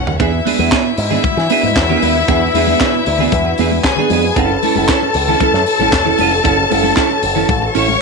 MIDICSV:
0, 0, Header, 1, 8, 480
1, 0, Start_track
1, 0, Tempo, 521286
1, 180, Time_signature, 4, 2, 24, 8
1, 7383, End_track
2, 0, Start_track
2, 0, Title_t, "String section"
2, 0, Program_c, 0, 48
2, 0, Note_on_c, 0, 61, 89
2, 0, Note_on_c, 0, 69, 82
2, 0, Note_on_c, 0, 78, 92
2, 146, Note_off_c, 0, 69, 0
2, 149, Note_off_c, 0, 61, 0
2, 149, Note_off_c, 0, 78, 0
2, 183, Note_on_c, 0, 76, 107
2, 185, Note_on_c, 0, 64, 90
2, 3505, Note_off_c, 0, 76, 0
2, 3506, Note_off_c, 0, 64, 0
2, 3540, Note_on_c, 0, 68, 82
2, 3542, Note_on_c, 0, 80, 89
2, 4011, Note_off_c, 0, 68, 0
2, 4012, Note_off_c, 0, 80, 0
2, 4017, Note_on_c, 0, 81, 112
2, 4018, Note_on_c, 0, 69, 98
2, 7102, Note_off_c, 0, 69, 0
2, 7102, Note_off_c, 0, 81, 0
2, 7135, Note_on_c, 0, 73, 87
2, 7137, Note_on_c, 0, 85, 90
2, 7383, Note_off_c, 0, 73, 0
2, 7383, Note_off_c, 0, 85, 0
2, 7383, End_track
3, 0, Start_track
3, 0, Title_t, "French horn section"
3, 0, Program_c, 1, 60
3, 187, Note_on_c, 1, 52, 78
3, 188, Note_on_c, 1, 71, 87
3, 190, Note_on_c, 1, 66, 75
3, 191, Note_on_c, 1, 59, 77
3, 193, Note_on_c, 1, 62, 74
3, 3987, Note_off_c, 1, 52, 0
3, 3989, Note_off_c, 1, 59, 0
3, 3989, Note_off_c, 1, 66, 0
3, 3990, Note_off_c, 1, 62, 0
3, 4022, Note_on_c, 1, 54, 86
3, 4025, Note_on_c, 1, 64, 72
3, 4026, Note_on_c, 1, 69, 90
3, 4028, Note_on_c, 1, 73, 76
3, 7383, Note_off_c, 1, 54, 0
3, 7383, Note_off_c, 1, 64, 0
3, 7383, Note_off_c, 1, 69, 0
3, 7383, Note_off_c, 1, 71, 0
3, 7383, Note_off_c, 1, 73, 0
3, 7383, End_track
4, 0, Start_track
4, 0, Title_t, "Clean electric guitar"
4, 0, Program_c, 2, 27
4, 181, Note_on_c, 2, 59, 76
4, 187, Note_on_c, 2, 62, 78
4, 197, Note_on_c, 2, 68, 84
4, 294, Note_off_c, 2, 68, 0
4, 306, Note_off_c, 2, 62, 0
4, 353, Note_off_c, 2, 59, 0
4, 416, Note_on_c, 2, 59, 69
4, 428, Note_on_c, 2, 62, 66
4, 435, Note_on_c, 2, 68, 74
4, 534, Note_off_c, 2, 68, 0
4, 538, Note_off_c, 2, 62, 0
4, 545, Note_off_c, 2, 59, 0
4, 545, Note_on_c, 2, 68, 57
4, 549, Note_on_c, 2, 62, 53
4, 556, Note_on_c, 2, 59, 52
4, 645, Note_off_c, 2, 59, 0
4, 652, Note_off_c, 2, 62, 0
4, 656, Note_on_c, 2, 59, 81
4, 658, Note_off_c, 2, 68, 0
4, 663, Note_on_c, 2, 62, 84
4, 669, Note_on_c, 2, 68, 97
4, 769, Note_off_c, 2, 68, 0
4, 783, Note_off_c, 2, 62, 0
4, 830, Note_off_c, 2, 59, 0
4, 1018, Note_on_c, 2, 68, 64
4, 1028, Note_on_c, 2, 62, 63
4, 1036, Note_on_c, 2, 59, 52
4, 1127, Note_off_c, 2, 59, 0
4, 1130, Note_off_c, 2, 62, 0
4, 1137, Note_off_c, 2, 68, 0
4, 1385, Note_on_c, 2, 59, 99
4, 1392, Note_on_c, 2, 62, 108
4, 1399, Note_on_c, 2, 68, 109
4, 1499, Note_off_c, 2, 68, 0
4, 1509, Note_off_c, 2, 62, 0
4, 1555, Note_off_c, 2, 59, 0
4, 1745, Note_on_c, 2, 68, 75
4, 1758, Note_on_c, 2, 62, 79
4, 1764, Note_on_c, 2, 59, 63
4, 1864, Note_off_c, 2, 59, 0
4, 1871, Note_off_c, 2, 62, 0
4, 1875, Note_on_c, 2, 59, 60
4, 1882, Note_on_c, 2, 62, 65
4, 1884, Note_off_c, 2, 68, 0
4, 1888, Note_on_c, 2, 71, 65
4, 1986, Note_off_c, 2, 71, 0
4, 1989, Note_off_c, 2, 62, 0
4, 2002, Note_off_c, 2, 59, 0
4, 2101, Note_on_c, 2, 59, 94
4, 2106, Note_on_c, 2, 62, 99
4, 2115, Note_on_c, 2, 68, 94
4, 2217, Note_off_c, 2, 68, 0
4, 2229, Note_off_c, 2, 62, 0
4, 2273, Note_off_c, 2, 59, 0
4, 2345, Note_on_c, 2, 59, 63
4, 2355, Note_on_c, 2, 62, 82
4, 2360, Note_on_c, 2, 68, 79
4, 2457, Note_off_c, 2, 68, 0
4, 2465, Note_off_c, 2, 62, 0
4, 2468, Note_on_c, 2, 68, 74
4, 2472, Note_off_c, 2, 59, 0
4, 2476, Note_on_c, 2, 62, 60
4, 2483, Note_on_c, 2, 59, 53
4, 2574, Note_off_c, 2, 59, 0
4, 2585, Note_on_c, 2, 59, 90
4, 2586, Note_off_c, 2, 62, 0
4, 2593, Note_off_c, 2, 68, 0
4, 2597, Note_on_c, 2, 62, 92
4, 2604, Note_on_c, 2, 68, 109
4, 2699, Note_off_c, 2, 68, 0
4, 2705, Note_off_c, 2, 62, 0
4, 2755, Note_off_c, 2, 59, 0
4, 2949, Note_on_c, 2, 68, 69
4, 2959, Note_on_c, 2, 62, 68
4, 2961, Note_on_c, 2, 59, 62
4, 3056, Note_off_c, 2, 59, 0
4, 3064, Note_off_c, 2, 62, 0
4, 3067, Note_off_c, 2, 68, 0
4, 3308, Note_on_c, 2, 59, 103
4, 3318, Note_on_c, 2, 62, 103
4, 3320, Note_on_c, 2, 68, 116
4, 3419, Note_off_c, 2, 68, 0
4, 3431, Note_off_c, 2, 62, 0
4, 3476, Note_off_c, 2, 59, 0
4, 3670, Note_on_c, 2, 68, 78
4, 3678, Note_on_c, 2, 62, 73
4, 3687, Note_on_c, 2, 59, 59
4, 3776, Note_off_c, 2, 59, 0
4, 3786, Note_off_c, 2, 62, 0
4, 3787, Note_on_c, 2, 59, 75
4, 3797, Note_on_c, 2, 62, 79
4, 3799, Note_off_c, 2, 68, 0
4, 3803, Note_on_c, 2, 71, 80
4, 3910, Note_off_c, 2, 71, 0
4, 3912, Note_off_c, 2, 62, 0
4, 3919, Note_off_c, 2, 59, 0
4, 4021, Note_on_c, 2, 61, 90
4, 4030, Note_on_c, 2, 64, 98
4, 4033, Note_on_c, 2, 69, 98
4, 4140, Note_off_c, 2, 69, 0
4, 4150, Note_off_c, 2, 64, 0
4, 4204, Note_off_c, 2, 61, 0
4, 4266, Note_on_c, 2, 61, 61
4, 4271, Note_on_c, 2, 64, 58
4, 4278, Note_on_c, 2, 69, 65
4, 4373, Note_off_c, 2, 69, 0
4, 4382, Note_off_c, 2, 64, 0
4, 4384, Note_on_c, 2, 69, 68
4, 4388, Note_off_c, 2, 61, 0
4, 4393, Note_on_c, 2, 64, 61
4, 4399, Note_on_c, 2, 61, 58
4, 4496, Note_off_c, 2, 61, 0
4, 4502, Note_off_c, 2, 64, 0
4, 4507, Note_on_c, 2, 61, 95
4, 4509, Note_off_c, 2, 69, 0
4, 4513, Note_on_c, 2, 64, 86
4, 4520, Note_on_c, 2, 69, 100
4, 4615, Note_off_c, 2, 69, 0
4, 4624, Note_off_c, 2, 64, 0
4, 4676, Note_off_c, 2, 61, 0
4, 4869, Note_on_c, 2, 69, 72
4, 4876, Note_on_c, 2, 64, 70
4, 4881, Note_on_c, 2, 61, 60
4, 4977, Note_off_c, 2, 61, 0
4, 4985, Note_off_c, 2, 64, 0
4, 4988, Note_on_c, 2, 61, 95
4, 4993, Note_off_c, 2, 69, 0
4, 4996, Note_on_c, 2, 64, 102
4, 5004, Note_on_c, 2, 69, 105
4, 5093, Note_off_c, 2, 69, 0
4, 5102, Note_off_c, 2, 64, 0
4, 5156, Note_off_c, 2, 61, 0
4, 5340, Note_on_c, 2, 69, 68
4, 5352, Note_on_c, 2, 64, 66
4, 5355, Note_on_c, 2, 61, 62
4, 5447, Note_off_c, 2, 61, 0
4, 5451, Note_off_c, 2, 64, 0
4, 5456, Note_off_c, 2, 69, 0
4, 5568, Note_on_c, 2, 69, 78
4, 5575, Note_on_c, 2, 64, 74
4, 5580, Note_on_c, 2, 61, 61
4, 5683, Note_off_c, 2, 61, 0
4, 5690, Note_off_c, 2, 64, 0
4, 5694, Note_on_c, 2, 61, 67
4, 5701, Note_on_c, 2, 64, 77
4, 5710, Note_off_c, 2, 69, 0
4, 5714, Note_on_c, 2, 71, 70
4, 5809, Note_off_c, 2, 71, 0
4, 5813, Note_off_c, 2, 64, 0
4, 5832, Note_off_c, 2, 61, 0
4, 5928, Note_on_c, 2, 61, 99
4, 5938, Note_on_c, 2, 64, 98
4, 5944, Note_on_c, 2, 69, 92
4, 6043, Note_off_c, 2, 69, 0
4, 6054, Note_off_c, 2, 64, 0
4, 6106, Note_off_c, 2, 61, 0
4, 6171, Note_on_c, 2, 61, 61
4, 6182, Note_on_c, 2, 64, 68
4, 6187, Note_on_c, 2, 69, 74
4, 6276, Note_off_c, 2, 69, 0
4, 6284, Note_off_c, 2, 64, 0
4, 6287, Note_on_c, 2, 69, 71
4, 6292, Note_off_c, 2, 61, 0
4, 6295, Note_on_c, 2, 64, 57
4, 6304, Note_on_c, 2, 61, 54
4, 6396, Note_off_c, 2, 61, 0
4, 6404, Note_off_c, 2, 64, 0
4, 6407, Note_on_c, 2, 61, 90
4, 6413, Note_off_c, 2, 69, 0
4, 6415, Note_on_c, 2, 64, 91
4, 6424, Note_on_c, 2, 69, 84
4, 6520, Note_off_c, 2, 69, 0
4, 6535, Note_off_c, 2, 64, 0
4, 6586, Note_off_c, 2, 61, 0
4, 6770, Note_on_c, 2, 69, 70
4, 6776, Note_on_c, 2, 64, 63
4, 6786, Note_on_c, 2, 61, 55
4, 6881, Note_off_c, 2, 61, 0
4, 6891, Note_off_c, 2, 64, 0
4, 6894, Note_off_c, 2, 69, 0
4, 7135, Note_on_c, 2, 61, 95
4, 7145, Note_on_c, 2, 64, 106
4, 7152, Note_on_c, 2, 69, 112
4, 7248, Note_off_c, 2, 69, 0
4, 7260, Note_off_c, 2, 64, 0
4, 7310, Note_off_c, 2, 61, 0
4, 7383, End_track
5, 0, Start_track
5, 0, Title_t, "Picked electric bass"
5, 0, Program_c, 3, 34
5, 60, Note_on_c, 3, 39, 81
5, 150, Note_off_c, 3, 39, 0
5, 183, Note_on_c, 3, 40, 99
5, 362, Note_off_c, 3, 40, 0
5, 541, Note_on_c, 3, 40, 89
5, 631, Note_off_c, 3, 40, 0
5, 902, Note_on_c, 3, 44, 93
5, 1081, Note_off_c, 3, 44, 0
5, 1263, Note_on_c, 3, 52, 104
5, 1352, Note_off_c, 3, 52, 0
5, 1502, Note_on_c, 3, 44, 85
5, 1592, Note_off_c, 3, 44, 0
5, 1619, Note_on_c, 3, 40, 84
5, 1800, Note_off_c, 3, 40, 0
5, 1863, Note_on_c, 3, 39, 74
5, 2042, Note_off_c, 3, 39, 0
5, 2102, Note_on_c, 3, 40, 115
5, 2281, Note_off_c, 3, 40, 0
5, 2337, Note_on_c, 3, 40, 89
5, 2518, Note_off_c, 3, 40, 0
5, 2825, Note_on_c, 3, 38, 100
5, 3003, Note_off_c, 3, 38, 0
5, 3061, Note_on_c, 3, 40, 115
5, 3241, Note_off_c, 3, 40, 0
5, 3300, Note_on_c, 3, 40, 104
5, 3480, Note_off_c, 3, 40, 0
5, 3777, Note_on_c, 3, 41, 96
5, 3958, Note_off_c, 3, 41, 0
5, 4016, Note_on_c, 3, 30, 123
5, 4197, Note_off_c, 3, 30, 0
5, 4379, Note_on_c, 3, 30, 102
5, 4470, Note_off_c, 3, 30, 0
5, 4738, Note_on_c, 3, 37, 104
5, 4919, Note_off_c, 3, 37, 0
5, 5095, Note_on_c, 3, 42, 97
5, 5187, Note_off_c, 3, 42, 0
5, 5332, Note_on_c, 3, 33, 84
5, 5455, Note_off_c, 3, 33, 0
5, 5455, Note_on_c, 3, 28, 85
5, 5637, Note_off_c, 3, 28, 0
5, 5705, Note_on_c, 3, 29, 92
5, 5883, Note_off_c, 3, 29, 0
5, 5939, Note_on_c, 3, 30, 122
5, 6119, Note_off_c, 3, 30, 0
5, 6182, Note_on_c, 3, 30, 99
5, 6361, Note_off_c, 3, 30, 0
5, 6658, Note_on_c, 3, 30, 95
5, 6839, Note_off_c, 3, 30, 0
5, 6894, Note_on_c, 3, 33, 98
5, 7076, Note_off_c, 3, 33, 0
5, 7143, Note_on_c, 3, 33, 97
5, 7322, Note_off_c, 3, 33, 0
5, 7383, End_track
6, 0, Start_track
6, 0, Title_t, "Muted clean electric guitar strokes"
6, 305, Note_on_c, 9, 29, 46
6, 397, Note_off_c, 9, 29, 0
6, 780, Note_on_c, 9, 29, 48
6, 872, Note_off_c, 9, 29, 0
6, 902, Note_on_c, 9, 29, 33
6, 994, Note_off_c, 9, 29, 0
6, 1138, Note_on_c, 9, 29, 48
6, 1230, Note_off_c, 9, 29, 0
6, 1262, Note_on_c, 9, 29, 50
6, 1354, Note_off_c, 9, 29, 0
6, 1510, Note_on_c, 9, 29, 49
6, 1602, Note_off_c, 9, 29, 0
6, 1629, Note_on_c, 9, 29, 54
6, 1721, Note_off_c, 9, 29, 0
6, 1989, Note_on_c, 9, 29, 45
6, 2081, Note_off_c, 9, 29, 0
6, 2229, Note_on_c, 9, 29, 47
6, 2321, Note_off_c, 9, 29, 0
6, 2710, Note_on_c, 9, 29, 49
6, 2802, Note_off_c, 9, 29, 0
6, 2836, Note_on_c, 9, 29, 44
6, 2928, Note_off_c, 9, 29, 0
6, 3067, Note_on_c, 9, 29, 46
6, 3159, Note_off_c, 9, 29, 0
6, 3188, Note_on_c, 9, 29, 57
6, 3280, Note_off_c, 9, 29, 0
6, 3430, Note_on_c, 9, 29, 46
6, 3523, Note_off_c, 9, 29, 0
6, 3550, Note_on_c, 9, 29, 51
6, 3642, Note_off_c, 9, 29, 0
6, 3913, Note_on_c, 9, 29, 49
6, 4005, Note_off_c, 9, 29, 0
6, 4151, Note_on_c, 9, 29, 64
6, 4244, Note_off_c, 9, 29, 0
6, 4626, Note_on_c, 9, 29, 39
6, 4718, Note_off_c, 9, 29, 0
6, 4748, Note_on_c, 9, 29, 47
6, 4840, Note_off_c, 9, 29, 0
6, 5104, Note_on_c, 9, 29, 55
6, 5196, Note_off_c, 9, 29, 0
6, 5223, Note_on_c, 9, 29, 48
6, 5315, Note_off_c, 9, 29, 0
6, 5459, Note_on_c, 9, 29, 55
6, 5551, Note_off_c, 9, 29, 0
6, 5812, Note_on_c, 9, 29, 44
6, 5905, Note_off_c, 9, 29, 0
6, 6054, Note_on_c, 9, 29, 50
6, 6146, Note_off_c, 9, 29, 0
6, 6531, Note_on_c, 9, 29, 55
6, 6623, Note_off_c, 9, 29, 0
6, 6649, Note_on_c, 9, 29, 40
6, 6741, Note_off_c, 9, 29, 0
6, 6892, Note_on_c, 9, 29, 45
6, 6984, Note_off_c, 9, 29, 0
6, 7017, Note_on_c, 9, 29, 47
6, 7109, Note_off_c, 9, 29, 0
6, 7259, Note_on_c, 9, 29, 52
6, 7351, Note_off_c, 9, 29, 0
6, 7383, End_track
7, 0, Start_track
7, 0, Title_t, "Muted picked electric bass strokes"
7, 1142, Note_on_c, 9, 29, 48
7, 1234, Note_off_c, 9, 29, 0
7, 4981, Note_on_c, 9, 29, 55
7, 5073, Note_off_c, 9, 29, 0
7, 7383, End_track
8, 0, Start_track
8, 0, Title_t, "Drums"
8, 66, Note_on_c, 9, 43, 80
8, 158, Note_off_c, 9, 43, 0
8, 183, Note_on_c, 9, 36, 113
8, 188, Note_on_c, 9, 42, 75
8, 190, Note_on_c, 9, 62, 33
8, 275, Note_off_c, 9, 36, 0
8, 280, Note_off_c, 9, 42, 0
8, 282, Note_off_c, 9, 62, 0
8, 427, Note_on_c, 9, 63, 76
8, 431, Note_on_c, 9, 46, 74
8, 519, Note_off_c, 9, 63, 0
8, 523, Note_off_c, 9, 46, 0
8, 545, Note_on_c, 9, 63, 85
8, 637, Note_off_c, 9, 63, 0
8, 662, Note_on_c, 9, 39, 114
8, 662, Note_on_c, 9, 62, 35
8, 663, Note_on_c, 9, 36, 127
8, 664, Note_on_c, 9, 38, 127
8, 670, Note_on_c, 9, 42, 83
8, 754, Note_off_c, 9, 39, 0
8, 754, Note_off_c, 9, 62, 0
8, 755, Note_off_c, 9, 36, 0
8, 756, Note_off_c, 9, 38, 0
8, 762, Note_off_c, 9, 42, 0
8, 898, Note_on_c, 9, 46, 67
8, 990, Note_off_c, 9, 46, 0
8, 1020, Note_on_c, 9, 64, 77
8, 1112, Note_off_c, 9, 64, 0
8, 1142, Note_on_c, 9, 36, 103
8, 1143, Note_on_c, 9, 63, 89
8, 1144, Note_on_c, 9, 42, 67
8, 1234, Note_off_c, 9, 36, 0
8, 1235, Note_off_c, 9, 63, 0
8, 1236, Note_off_c, 9, 42, 0
8, 1263, Note_on_c, 9, 62, 44
8, 1276, Note_on_c, 9, 38, 37
8, 1355, Note_off_c, 9, 62, 0
8, 1368, Note_off_c, 9, 38, 0
8, 1379, Note_on_c, 9, 46, 66
8, 1471, Note_off_c, 9, 46, 0
8, 1511, Note_on_c, 9, 63, 94
8, 1603, Note_off_c, 9, 63, 0
8, 1620, Note_on_c, 9, 36, 108
8, 1623, Note_on_c, 9, 42, 65
8, 1624, Note_on_c, 9, 39, 90
8, 1626, Note_on_c, 9, 38, 127
8, 1712, Note_off_c, 9, 36, 0
8, 1715, Note_off_c, 9, 42, 0
8, 1716, Note_off_c, 9, 39, 0
8, 1718, Note_off_c, 9, 38, 0
8, 1743, Note_on_c, 9, 64, 80
8, 1835, Note_off_c, 9, 64, 0
8, 1864, Note_on_c, 9, 46, 68
8, 1866, Note_on_c, 9, 63, 68
8, 1956, Note_off_c, 9, 46, 0
8, 1958, Note_off_c, 9, 63, 0
8, 2103, Note_on_c, 9, 36, 122
8, 2104, Note_on_c, 9, 42, 69
8, 2195, Note_off_c, 9, 36, 0
8, 2197, Note_off_c, 9, 42, 0
8, 2222, Note_on_c, 9, 62, 32
8, 2314, Note_off_c, 9, 62, 0
8, 2347, Note_on_c, 9, 46, 78
8, 2348, Note_on_c, 9, 63, 71
8, 2439, Note_off_c, 9, 46, 0
8, 2440, Note_off_c, 9, 63, 0
8, 2463, Note_on_c, 9, 63, 88
8, 2555, Note_off_c, 9, 63, 0
8, 2583, Note_on_c, 9, 36, 117
8, 2584, Note_on_c, 9, 39, 102
8, 2585, Note_on_c, 9, 38, 127
8, 2591, Note_on_c, 9, 42, 88
8, 2675, Note_off_c, 9, 36, 0
8, 2676, Note_off_c, 9, 39, 0
8, 2677, Note_off_c, 9, 38, 0
8, 2683, Note_off_c, 9, 42, 0
8, 2705, Note_on_c, 9, 62, 37
8, 2797, Note_off_c, 9, 62, 0
8, 2820, Note_on_c, 9, 46, 75
8, 2912, Note_off_c, 9, 46, 0
8, 2933, Note_on_c, 9, 64, 74
8, 3025, Note_off_c, 9, 64, 0
8, 3055, Note_on_c, 9, 62, 38
8, 3055, Note_on_c, 9, 63, 89
8, 3058, Note_on_c, 9, 36, 109
8, 3062, Note_on_c, 9, 42, 68
8, 3147, Note_off_c, 9, 62, 0
8, 3147, Note_off_c, 9, 63, 0
8, 3151, Note_off_c, 9, 36, 0
8, 3155, Note_off_c, 9, 42, 0
8, 3177, Note_on_c, 9, 62, 45
8, 3269, Note_off_c, 9, 62, 0
8, 3293, Note_on_c, 9, 46, 55
8, 3385, Note_off_c, 9, 46, 0
8, 3421, Note_on_c, 9, 63, 90
8, 3513, Note_off_c, 9, 63, 0
8, 3535, Note_on_c, 9, 36, 107
8, 3536, Note_on_c, 9, 42, 68
8, 3538, Note_on_c, 9, 39, 93
8, 3540, Note_on_c, 9, 38, 112
8, 3627, Note_off_c, 9, 36, 0
8, 3628, Note_off_c, 9, 42, 0
8, 3630, Note_off_c, 9, 39, 0
8, 3632, Note_off_c, 9, 38, 0
8, 3651, Note_on_c, 9, 62, 35
8, 3651, Note_on_c, 9, 64, 75
8, 3743, Note_off_c, 9, 62, 0
8, 3743, Note_off_c, 9, 64, 0
8, 3775, Note_on_c, 9, 63, 70
8, 3777, Note_on_c, 9, 46, 60
8, 3867, Note_off_c, 9, 63, 0
8, 3869, Note_off_c, 9, 46, 0
8, 4018, Note_on_c, 9, 36, 115
8, 4019, Note_on_c, 9, 42, 67
8, 4110, Note_off_c, 9, 36, 0
8, 4111, Note_off_c, 9, 42, 0
8, 4136, Note_on_c, 9, 62, 33
8, 4228, Note_off_c, 9, 62, 0
8, 4262, Note_on_c, 9, 46, 79
8, 4263, Note_on_c, 9, 63, 76
8, 4354, Note_off_c, 9, 46, 0
8, 4355, Note_off_c, 9, 63, 0
8, 4381, Note_on_c, 9, 63, 79
8, 4473, Note_off_c, 9, 63, 0
8, 4499, Note_on_c, 9, 39, 113
8, 4500, Note_on_c, 9, 36, 127
8, 4500, Note_on_c, 9, 38, 127
8, 4506, Note_on_c, 9, 42, 86
8, 4591, Note_off_c, 9, 39, 0
8, 4592, Note_off_c, 9, 36, 0
8, 4592, Note_off_c, 9, 38, 0
8, 4598, Note_off_c, 9, 42, 0
8, 4625, Note_on_c, 9, 62, 35
8, 4717, Note_off_c, 9, 62, 0
8, 4734, Note_on_c, 9, 46, 72
8, 4826, Note_off_c, 9, 46, 0
8, 4861, Note_on_c, 9, 64, 73
8, 4954, Note_off_c, 9, 64, 0
8, 4977, Note_on_c, 9, 36, 116
8, 4980, Note_on_c, 9, 42, 71
8, 4982, Note_on_c, 9, 63, 85
8, 5069, Note_off_c, 9, 36, 0
8, 5072, Note_off_c, 9, 42, 0
8, 5074, Note_off_c, 9, 63, 0
8, 5102, Note_on_c, 9, 62, 49
8, 5105, Note_on_c, 9, 38, 38
8, 5195, Note_off_c, 9, 62, 0
8, 5197, Note_off_c, 9, 38, 0
8, 5215, Note_on_c, 9, 46, 66
8, 5307, Note_off_c, 9, 46, 0
8, 5349, Note_on_c, 9, 63, 83
8, 5441, Note_off_c, 9, 63, 0
8, 5455, Note_on_c, 9, 36, 109
8, 5457, Note_on_c, 9, 42, 68
8, 5459, Note_on_c, 9, 39, 92
8, 5461, Note_on_c, 9, 38, 118
8, 5466, Note_on_c, 9, 62, 36
8, 5547, Note_off_c, 9, 36, 0
8, 5549, Note_off_c, 9, 42, 0
8, 5551, Note_off_c, 9, 39, 0
8, 5553, Note_off_c, 9, 38, 0
8, 5558, Note_off_c, 9, 62, 0
8, 5575, Note_on_c, 9, 64, 70
8, 5667, Note_off_c, 9, 64, 0
8, 5695, Note_on_c, 9, 46, 63
8, 5697, Note_on_c, 9, 63, 72
8, 5787, Note_off_c, 9, 46, 0
8, 5790, Note_off_c, 9, 63, 0
8, 5938, Note_on_c, 9, 36, 127
8, 5940, Note_on_c, 9, 42, 78
8, 5944, Note_on_c, 9, 62, 30
8, 6030, Note_off_c, 9, 36, 0
8, 6032, Note_off_c, 9, 42, 0
8, 6036, Note_off_c, 9, 62, 0
8, 6182, Note_on_c, 9, 46, 73
8, 6183, Note_on_c, 9, 63, 75
8, 6274, Note_off_c, 9, 46, 0
8, 6275, Note_off_c, 9, 63, 0
8, 6297, Note_on_c, 9, 63, 83
8, 6389, Note_off_c, 9, 63, 0
8, 6415, Note_on_c, 9, 39, 105
8, 6417, Note_on_c, 9, 38, 127
8, 6420, Note_on_c, 9, 36, 127
8, 6423, Note_on_c, 9, 42, 94
8, 6508, Note_off_c, 9, 39, 0
8, 6509, Note_off_c, 9, 38, 0
8, 6512, Note_off_c, 9, 36, 0
8, 6515, Note_off_c, 9, 42, 0
8, 6541, Note_on_c, 9, 62, 39
8, 6633, Note_off_c, 9, 62, 0
8, 6654, Note_on_c, 9, 46, 65
8, 6746, Note_off_c, 9, 46, 0
8, 6773, Note_on_c, 9, 64, 76
8, 6865, Note_off_c, 9, 64, 0
8, 6897, Note_on_c, 9, 36, 103
8, 6897, Note_on_c, 9, 63, 90
8, 6899, Note_on_c, 9, 42, 71
8, 6989, Note_off_c, 9, 36, 0
8, 6989, Note_off_c, 9, 63, 0
8, 6992, Note_off_c, 9, 42, 0
8, 7019, Note_on_c, 9, 62, 46
8, 7111, Note_off_c, 9, 62, 0
8, 7135, Note_on_c, 9, 46, 63
8, 7227, Note_off_c, 9, 46, 0
8, 7260, Note_on_c, 9, 63, 84
8, 7352, Note_off_c, 9, 63, 0
8, 7383, End_track
0, 0, End_of_file